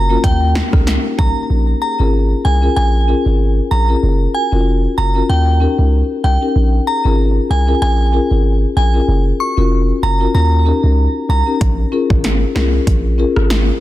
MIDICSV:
0, 0, Header, 1, 5, 480
1, 0, Start_track
1, 0, Key_signature, -5, "minor"
1, 0, Tempo, 631579
1, 1143, Time_signature, 4, 2, 24, 8
1, 10489, End_track
2, 0, Start_track
2, 0, Title_t, "Synth bell"
2, 0, Program_c, 0, 98
2, 0, Note_on_c, 0, 82, 82
2, 113, Note_off_c, 0, 82, 0
2, 181, Note_on_c, 0, 79, 88
2, 534, Note_off_c, 0, 79, 0
2, 902, Note_on_c, 0, 82, 76
2, 997, Note_off_c, 0, 82, 0
2, 1380, Note_on_c, 0, 82, 76
2, 1477, Note_off_c, 0, 82, 0
2, 1860, Note_on_c, 0, 80, 79
2, 2031, Note_off_c, 0, 80, 0
2, 2101, Note_on_c, 0, 80, 89
2, 2454, Note_off_c, 0, 80, 0
2, 2820, Note_on_c, 0, 82, 75
2, 2916, Note_off_c, 0, 82, 0
2, 3302, Note_on_c, 0, 80, 68
2, 3398, Note_off_c, 0, 80, 0
2, 3782, Note_on_c, 0, 82, 76
2, 3953, Note_off_c, 0, 82, 0
2, 4024, Note_on_c, 0, 79, 90
2, 4375, Note_off_c, 0, 79, 0
2, 4743, Note_on_c, 0, 79, 75
2, 4838, Note_off_c, 0, 79, 0
2, 5223, Note_on_c, 0, 82, 78
2, 5318, Note_off_c, 0, 82, 0
2, 5705, Note_on_c, 0, 80, 78
2, 5874, Note_off_c, 0, 80, 0
2, 5942, Note_on_c, 0, 80, 102
2, 6295, Note_off_c, 0, 80, 0
2, 6663, Note_on_c, 0, 80, 78
2, 6758, Note_off_c, 0, 80, 0
2, 7145, Note_on_c, 0, 85, 72
2, 7239, Note_off_c, 0, 85, 0
2, 7623, Note_on_c, 0, 82, 79
2, 7793, Note_off_c, 0, 82, 0
2, 7863, Note_on_c, 0, 82, 82
2, 8215, Note_off_c, 0, 82, 0
2, 8586, Note_on_c, 0, 82, 75
2, 8680, Note_off_c, 0, 82, 0
2, 10489, End_track
3, 0, Start_track
3, 0, Title_t, "Marimba"
3, 0, Program_c, 1, 12
3, 71, Note_on_c, 1, 58, 72
3, 73, Note_on_c, 1, 61, 65
3, 75, Note_on_c, 1, 65, 69
3, 78, Note_on_c, 1, 66, 64
3, 81, Note_on_c, 1, 70, 79
3, 159, Note_off_c, 1, 58, 0
3, 160, Note_off_c, 1, 61, 0
3, 161, Note_off_c, 1, 65, 0
3, 162, Note_off_c, 1, 66, 0
3, 164, Note_off_c, 1, 70, 0
3, 426, Note_on_c, 1, 70, 88
3, 478, Note_off_c, 1, 70, 0
3, 549, Note_on_c, 1, 58, 72
3, 552, Note_on_c, 1, 61, 67
3, 554, Note_on_c, 1, 63, 69
3, 557, Note_on_c, 1, 67, 65
3, 559, Note_on_c, 1, 70, 79
3, 638, Note_off_c, 1, 58, 0
3, 639, Note_off_c, 1, 61, 0
3, 640, Note_off_c, 1, 63, 0
3, 642, Note_off_c, 1, 67, 0
3, 643, Note_off_c, 1, 70, 0
3, 895, Note_on_c, 1, 58, 74
3, 897, Note_on_c, 1, 61, 68
3, 900, Note_on_c, 1, 63, 70
3, 903, Note_on_c, 1, 67, 70
3, 905, Note_on_c, 1, 70, 82
3, 1006, Note_off_c, 1, 58, 0
3, 1007, Note_off_c, 1, 61, 0
3, 1009, Note_off_c, 1, 63, 0
3, 1010, Note_off_c, 1, 67, 0
3, 1012, Note_off_c, 1, 70, 0
3, 1374, Note_on_c, 1, 68, 69
3, 1385, Note_on_c, 1, 70, 73
3, 1432, Note_off_c, 1, 68, 0
3, 1438, Note_off_c, 1, 70, 0
3, 1511, Note_on_c, 1, 61, 66
3, 1513, Note_on_c, 1, 65, 60
3, 1517, Note_on_c, 1, 68, 61
3, 1522, Note_on_c, 1, 70, 71
3, 1599, Note_off_c, 1, 61, 0
3, 1600, Note_off_c, 1, 65, 0
3, 1602, Note_off_c, 1, 68, 0
3, 1604, Note_off_c, 1, 70, 0
3, 1857, Note_on_c, 1, 68, 73
3, 1867, Note_on_c, 1, 70, 75
3, 1914, Note_off_c, 1, 68, 0
3, 1919, Note_off_c, 1, 70, 0
3, 1990, Note_on_c, 1, 61, 66
3, 1994, Note_on_c, 1, 65, 61
3, 1997, Note_on_c, 1, 68, 63
3, 2001, Note_on_c, 1, 70, 72
3, 2078, Note_off_c, 1, 61, 0
3, 2080, Note_off_c, 1, 65, 0
3, 2082, Note_off_c, 1, 68, 0
3, 2083, Note_off_c, 1, 70, 0
3, 2339, Note_on_c, 1, 61, 73
3, 2343, Note_on_c, 1, 65, 64
3, 2345, Note_on_c, 1, 68, 69
3, 2349, Note_on_c, 1, 70, 80
3, 2448, Note_off_c, 1, 61, 0
3, 2450, Note_off_c, 1, 65, 0
3, 2452, Note_off_c, 1, 68, 0
3, 2453, Note_off_c, 1, 70, 0
3, 2819, Note_on_c, 1, 68, 66
3, 2829, Note_on_c, 1, 70, 76
3, 2875, Note_off_c, 1, 68, 0
3, 2880, Note_off_c, 1, 70, 0
3, 2952, Note_on_c, 1, 61, 60
3, 2957, Note_on_c, 1, 65, 55
3, 2960, Note_on_c, 1, 68, 57
3, 2963, Note_on_c, 1, 70, 71
3, 3039, Note_off_c, 1, 61, 0
3, 3042, Note_off_c, 1, 65, 0
3, 3043, Note_off_c, 1, 68, 0
3, 3045, Note_off_c, 1, 70, 0
3, 3299, Note_on_c, 1, 66, 69
3, 3309, Note_on_c, 1, 70, 80
3, 3355, Note_off_c, 1, 66, 0
3, 3360, Note_off_c, 1, 70, 0
3, 3434, Note_on_c, 1, 61, 62
3, 3438, Note_on_c, 1, 65, 61
3, 3441, Note_on_c, 1, 66, 58
3, 3445, Note_on_c, 1, 70, 70
3, 3520, Note_off_c, 1, 61, 0
3, 3522, Note_off_c, 1, 65, 0
3, 3523, Note_off_c, 1, 66, 0
3, 3526, Note_off_c, 1, 70, 0
3, 3778, Note_on_c, 1, 66, 75
3, 3790, Note_on_c, 1, 70, 80
3, 3834, Note_off_c, 1, 66, 0
3, 3840, Note_off_c, 1, 70, 0
3, 3913, Note_on_c, 1, 61, 69
3, 3916, Note_on_c, 1, 65, 63
3, 3920, Note_on_c, 1, 66, 58
3, 3924, Note_on_c, 1, 70, 72
3, 3999, Note_off_c, 1, 61, 0
3, 4001, Note_off_c, 1, 65, 0
3, 4003, Note_off_c, 1, 66, 0
3, 4005, Note_off_c, 1, 70, 0
3, 4258, Note_on_c, 1, 61, 73
3, 4262, Note_on_c, 1, 63, 68
3, 4265, Note_on_c, 1, 67, 66
3, 4268, Note_on_c, 1, 70, 80
3, 4368, Note_off_c, 1, 61, 0
3, 4370, Note_off_c, 1, 63, 0
3, 4371, Note_off_c, 1, 67, 0
3, 4373, Note_off_c, 1, 70, 0
3, 4738, Note_on_c, 1, 67, 67
3, 4750, Note_on_c, 1, 70, 74
3, 4794, Note_off_c, 1, 67, 0
3, 4800, Note_off_c, 1, 70, 0
3, 4873, Note_on_c, 1, 61, 64
3, 4876, Note_on_c, 1, 63, 60
3, 4879, Note_on_c, 1, 67, 57
3, 4884, Note_on_c, 1, 70, 74
3, 4960, Note_off_c, 1, 61, 0
3, 4961, Note_off_c, 1, 63, 0
3, 4963, Note_off_c, 1, 67, 0
3, 4965, Note_off_c, 1, 70, 0
3, 5217, Note_on_c, 1, 68, 70
3, 5228, Note_on_c, 1, 70, 77
3, 5274, Note_off_c, 1, 68, 0
3, 5279, Note_off_c, 1, 70, 0
3, 5352, Note_on_c, 1, 61, 66
3, 5356, Note_on_c, 1, 65, 60
3, 5359, Note_on_c, 1, 68, 61
3, 5362, Note_on_c, 1, 70, 77
3, 5439, Note_off_c, 1, 61, 0
3, 5441, Note_off_c, 1, 65, 0
3, 5443, Note_off_c, 1, 68, 0
3, 5444, Note_off_c, 1, 70, 0
3, 5696, Note_on_c, 1, 68, 73
3, 5706, Note_on_c, 1, 70, 80
3, 5753, Note_off_c, 1, 68, 0
3, 5758, Note_off_c, 1, 70, 0
3, 5830, Note_on_c, 1, 61, 66
3, 5834, Note_on_c, 1, 65, 61
3, 5837, Note_on_c, 1, 68, 62
3, 5840, Note_on_c, 1, 70, 74
3, 5918, Note_off_c, 1, 61, 0
3, 5920, Note_off_c, 1, 65, 0
3, 5922, Note_off_c, 1, 68, 0
3, 5923, Note_off_c, 1, 70, 0
3, 6176, Note_on_c, 1, 61, 72
3, 6180, Note_on_c, 1, 65, 68
3, 6183, Note_on_c, 1, 68, 69
3, 6186, Note_on_c, 1, 70, 81
3, 6287, Note_off_c, 1, 61, 0
3, 6289, Note_off_c, 1, 65, 0
3, 6290, Note_off_c, 1, 68, 0
3, 6292, Note_off_c, 1, 70, 0
3, 6657, Note_on_c, 1, 68, 67
3, 6667, Note_on_c, 1, 70, 78
3, 6713, Note_off_c, 1, 68, 0
3, 6719, Note_off_c, 1, 70, 0
3, 6793, Note_on_c, 1, 61, 61
3, 6796, Note_on_c, 1, 65, 58
3, 6799, Note_on_c, 1, 68, 57
3, 6803, Note_on_c, 1, 70, 69
3, 6879, Note_off_c, 1, 61, 0
3, 6881, Note_off_c, 1, 65, 0
3, 6883, Note_off_c, 1, 68, 0
3, 6885, Note_off_c, 1, 70, 0
3, 7139, Note_on_c, 1, 66, 69
3, 7150, Note_on_c, 1, 70, 75
3, 7195, Note_off_c, 1, 66, 0
3, 7200, Note_off_c, 1, 70, 0
3, 7271, Note_on_c, 1, 61, 68
3, 7275, Note_on_c, 1, 65, 62
3, 7278, Note_on_c, 1, 66, 61
3, 7281, Note_on_c, 1, 70, 75
3, 7359, Note_off_c, 1, 61, 0
3, 7361, Note_off_c, 1, 65, 0
3, 7362, Note_off_c, 1, 66, 0
3, 7364, Note_off_c, 1, 70, 0
3, 7618, Note_on_c, 1, 66, 72
3, 7628, Note_on_c, 1, 70, 81
3, 7674, Note_off_c, 1, 66, 0
3, 7679, Note_off_c, 1, 70, 0
3, 7751, Note_on_c, 1, 61, 65
3, 7755, Note_on_c, 1, 65, 64
3, 7759, Note_on_c, 1, 66, 63
3, 7762, Note_on_c, 1, 70, 73
3, 7839, Note_off_c, 1, 61, 0
3, 7841, Note_off_c, 1, 65, 0
3, 7843, Note_off_c, 1, 66, 0
3, 7844, Note_off_c, 1, 70, 0
3, 8096, Note_on_c, 1, 61, 73
3, 8100, Note_on_c, 1, 63, 68
3, 8102, Note_on_c, 1, 67, 68
3, 8106, Note_on_c, 1, 70, 80
3, 8207, Note_off_c, 1, 61, 0
3, 8209, Note_off_c, 1, 63, 0
3, 8210, Note_off_c, 1, 67, 0
3, 8212, Note_off_c, 1, 70, 0
3, 8577, Note_on_c, 1, 67, 70
3, 8587, Note_on_c, 1, 70, 78
3, 8634, Note_off_c, 1, 67, 0
3, 8639, Note_off_c, 1, 70, 0
3, 8711, Note_on_c, 1, 61, 65
3, 8713, Note_on_c, 1, 63, 59
3, 8717, Note_on_c, 1, 67, 58
3, 8720, Note_on_c, 1, 70, 70
3, 8798, Note_off_c, 1, 61, 0
3, 8800, Note_off_c, 1, 63, 0
3, 8802, Note_off_c, 1, 67, 0
3, 8803, Note_off_c, 1, 70, 0
3, 9058, Note_on_c, 1, 61, 81
3, 9060, Note_on_c, 1, 65, 78
3, 9065, Note_on_c, 1, 68, 78
3, 9068, Note_on_c, 1, 70, 96
3, 9168, Note_off_c, 1, 61, 0
3, 9169, Note_off_c, 1, 65, 0
3, 9171, Note_off_c, 1, 68, 0
3, 9173, Note_off_c, 1, 70, 0
3, 9539, Note_on_c, 1, 61, 89
3, 9542, Note_on_c, 1, 65, 82
3, 9546, Note_on_c, 1, 68, 78
3, 9549, Note_on_c, 1, 70, 97
3, 9649, Note_off_c, 1, 61, 0
3, 9650, Note_off_c, 1, 65, 0
3, 9652, Note_off_c, 1, 68, 0
3, 9654, Note_off_c, 1, 70, 0
3, 10018, Note_on_c, 1, 61, 88
3, 10022, Note_on_c, 1, 65, 85
3, 10026, Note_on_c, 1, 68, 82
3, 10029, Note_on_c, 1, 70, 101
3, 10128, Note_off_c, 1, 61, 0
3, 10130, Note_off_c, 1, 65, 0
3, 10132, Note_off_c, 1, 68, 0
3, 10134, Note_off_c, 1, 70, 0
3, 10489, End_track
4, 0, Start_track
4, 0, Title_t, "808-style bass"
4, 0, Program_c, 2, 38
4, 0, Note_on_c, 2, 30, 96
4, 126, Note_off_c, 2, 30, 0
4, 181, Note_on_c, 2, 39, 117
4, 467, Note_off_c, 2, 39, 0
4, 555, Note_on_c, 2, 37, 91
4, 739, Note_off_c, 2, 37, 0
4, 901, Note_on_c, 2, 36, 104
4, 1004, Note_off_c, 2, 36, 0
4, 1141, Note_on_c, 2, 34, 112
4, 1325, Note_off_c, 2, 34, 0
4, 1517, Note_on_c, 2, 32, 86
4, 1781, Note_off_c, 2, 32, 0
4, 1862, Note_on_c, 2, 36, 99
4, 2046, Note_off_c, 2, 36, 0
4, 2102, Note_on_c, 2, 34, 103
4, 2388, Note_off_c, 2, 34, 0
4, 2477, Note_on_c, 2, 32, 89
4, 2741, Note_off_c, 2, 32, 0
4, 2822, Note_on_c, 2, 34, 90
4, 3005, Note_off_c, 2, 34, 0
4, 3064, Note_on_c, 2, 30, 107
4, 3247, Note_off_c, 2, 30, 0
4, 3438, Note_on_c, 2, 29, 80
4, 3701, Note_off_c, 2, 29, 0
4, 3785, Note_on_c, 2, 30, 93
4, 3967, Note_off_c, 2, 30, 0
4, 4023, Note_on_c, 2, 39, 114
4, 4309, Note_off_c, 2, 39, 0
4, 4397, Note_on_c, 2, 37, 87
4, 4580, Note_off_c, 2, 37, 0
4, 4743, Note_on_c, 2, 36, 92
4, 4845, Note_off_c, 2, 36, 0
4, 4983, Note_on_c, 2, 34, 113
4, 5166, Note_off_c, 2, 34, 0
4, 5358, Note_on_c, 2, 32, 84
4, 5622, Note_off_c, 2, 32, 0
4, 5703, Note_on_c, 2, 36, 93
4, 5886, Note_off_c, 2, 36, 0
4, 5942, Note_on_c, 2, 34, 104
4, 6228, Note_off_c, 2, 34, 0
4, 6316, Note_on_c, 2, 32, 92
4, 6580, Note_off_c, 2, 32, 0
4, 6662, Note_on_c, 2, 34, 91
4, 6845, Note_off_c, 2, 34, 0
4, 6902, Note_on_c, 2, 30, 105
4, 7086, Note_off_c, 2, 30, 0
4, 7277, Note_on_c, 2, 29, 85
4, 7541, Note_off_c, 2, 29, 0
4, 7622, Note_on_c, 2, 30, 93
4, 7806, Note_off_c, 2, 30, 0
4, 7862, Note_on_c, 2, 39, 111
4, 8148, Note_off_c, 2, 39, 0
4, 8235, Note_on_c, 2, 37, 89
4, 8419, Note_off_c, 2, 37, 0
4, 8582, Note_on_c, 2, 36, 98
4, 8685, Note_off_c, 2, 36, 0
4, 8824, Note_on_c, 2, 34, 121
4, 9007, Note_off_c, 2, 34, 0
4, 9198, Note_on_c, 2, 32, 87
4, 9461, Note_off_c, 2, 32, 0
4, 9543, Note_on_c, 2, 36, 99
4, 9726, Note_off_c, 2, 36, 0
4, 9781, Note_on_c, 2, 34, 102
4, 10068, Note_off_c, 2, 34, 0
4, 10158, Note_on_c, 2, 32, 94
4, 10421, Note_off_c, 2, 32, 0
4, 10489, End_track
5, 0, Start_track
5, 0, Title_t, "Drums"
5, 180, Note_on_c, 9, 36, 93
5, 182, Note_on_c, 9, 42, 78
5, 256, Note_off_c, 9, 36, 0
5, 258, Note_off_c, 9, 42, 0
5, 421, Note_on_c, 9, 38, 109
5, 497, Note_off_c, 9, 38, 0
5, 555, Note_on_c, 9, 36, 109
5, 556, Note_on_c, 9, 37, 94
5, 631, Note_off_c, 9, 36, 0
5, 632, Note_off_c, 9, 37, 0
5, 661, Note_on_c, 9, 38, 63
5, 664, Note_on_c, 9, 42, 81
5, 737, Note_off_c, 9, 38, 0
5, 740, Note_off_c, 9, 42, 0
5, 902, Note_on_c, 9, 36, 100
5, 978, Note_off_c, 9, 36, 0
5, 8823, Note_on_c, 9, 36, 108
5, 8824, Note_on_c, 9, 42, 79
5, 8899, Note_off_c, 9, 36, 0
5, 8900, Note_off_c, 9, 42, 0
5, 9198, Note_on_c, 9, 36, 97
5, 9274, Note_off_c, 9, 36, 0
5, 9302, Note_on_c, 9, 42, 61
5, 9305, Note_on_c, 9, 38, 57
5, 9378, Note_off_c, 9, 42, 0
5, 9381, Note_off_c, 9, 38, 0
5, 9543, Note_on_c, 9, 38, 111
5, 9619, Note_off_c, 9, 38, 0
5, 9781, Note_on_c, 9, 36, 91
5, 9782, Note_on_c, 9, 42, 75
5, 9857, Note_off_c, 9, 36, 0
5, 9858, Note_off_c, 9, 42, 0
5, 10157, Note_on_c, 9, 37, 93
5, 10233, Note_off_c, 9, 37, 0
5, 10262, Note_on_c, 9, 38, 104
5, 10265, Note_on_c, 9, 42, 77
5, 10338, Note_off_c, 9, 38, 0
5, 10341, Note_off_c, 9, 42, 0
5, 10489, End_track
0, 0, End_of_file